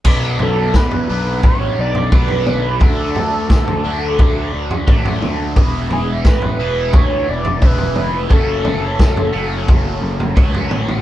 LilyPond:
<<
  \new Staff \with { instrumentName = "Analog synth lead" } { \time 4/4 \key b \dorian \tempo 4 = 87 r8 a'8 b'4 cis''8 d''8 b'4 | a'2. r4 | r8 gis'8 b'4 cis''8 d''8 b'4 | a'2. r4 | }
  \new Staff \with { instrumentName = "Overdriven electric guitar" } { \clef bass \time 4/4 \key b \dorian <b, fis b d'>4. <b, fis b d'>4. <b, fis b d'>4 | <d fis a d'>4. <d fis a d'>4. <d fis a d'>4 | <e gis b e'>4. <e gis b e'>4. <e gis b e'>4 | <fis, cis fis a cis'>4. <fis, cis fis a cis'>4. <fis, cis fis a cis'>4 | }
  \new Staff \with { instrumentName = "Picked electric bass" } { \clef bass \time 4/4 \key b \dorian b,,8 b,,8 e,8 b,,8 a,,8 b,,8 b,,8 b,,8 | d,8 d,8 d,8 d,8 d,8 d,8 a,,8 d,8 | e,,8 e,,8 a,,8 e,,8 d,8 e,,8 e,,8 eis,,8 | fis,,8 fis,,8 fis,,8 fis,,8 fis,,8 fis,,8 cis,8 a,,8 | }
  \new DrumStaff \with { instrumentName = "Drums" } \drummode { \time 4/4 <cymc bd tomfh>8 tomfh8 <bd sn>16 tomfh8. <bd tomfh>8. tomfh16 <bd toml>16 tomfh16 toml8 | <bd tomfh>8 tomfh8 <bd sn>16 tomfh8. <bd tomfh>8. tomfh16 <bd toml>16 tomfh16 toml8 | <bd tomfh>8 tomfh8 <bd sn>16 tomfh8. <bd tomfh>8. tomfh16 <bd toml>16 tomfh16 toml8 | <bd tomfh>8 <tomfh toml>8 <bd sn>16 tomfh8. <bd tomfh>8. tomfh16 <bd toml>16 tomfh16 toml16 toml16 | }
>>